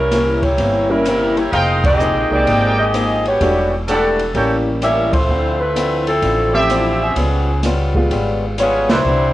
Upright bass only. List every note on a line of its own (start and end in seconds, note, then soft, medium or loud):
0.00 0.54 C2 medium
0.58 1.48 G1 medium
1.52 2.11 F1 medium
2.15 2.29 A#1 medium
2.31 2.45 C2 medium
2.46 3.36 G#1 medium
3.40 4.30 E1 medium
4.35 5.25 A1 medium
5.28 6.18 D2 medium
6.22 7.12 A1 medium
7.16 8.06 C#2 medium
8.10 8.85 G#1 medium
8.88 9.03 C#2 medium
9.04 9.33 C2 medium